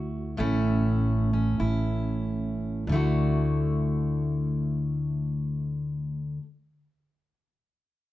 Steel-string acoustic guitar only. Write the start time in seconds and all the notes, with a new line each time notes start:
Already playing: D2 A3 E4 F#4
0.37 A2 A3 C#4 E4
1.33 C#4
1.60 E4
2.87 D2 D3
2.92 A3 E4 F#4